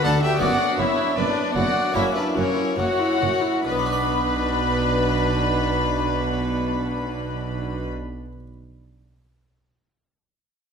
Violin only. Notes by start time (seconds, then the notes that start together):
0.04 F#5
0.23 E5
0.40 D5
0.79 C#5
1.17 B4
1.55 D5
1.95 C#5
2.15 B4
2.37 A#4
2.78 C#5
3.66 B4